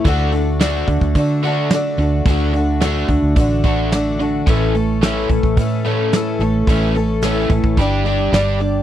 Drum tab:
HH |o-o-o-o-o-o-o-o-|o-o-o-o-o-o-o-o-|o-o-o-o-o-o-o-o-|o-o-o-o-o-o-o-o-|
SD |----o-------o---|----o-------o---|----o-------o---|----o-------o---|
BD |o-----ooo-------|o-----o-o-o-----|o-----ooo-------|o-----ooo-------|